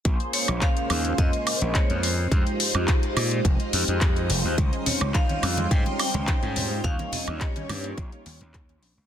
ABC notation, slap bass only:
X:1
M:4/4
L:1/16
Q:1/4=106
K:Bbdor
V:1 name="Slap bass" clef=bass
B,,, z2 B,,, z2 E,,2 F,, z2 B,,, z F,,3 | F,, z2 F,, z2 B,,2 F,,, z F,, F,,3 F,,, E,, | D,, z2 D,, z2 F,,2 A,, z2 D,, z A,,3 | E,, z2 E,, z2 G,,2 B,,, z E,, E,,3 B,,, D,, |]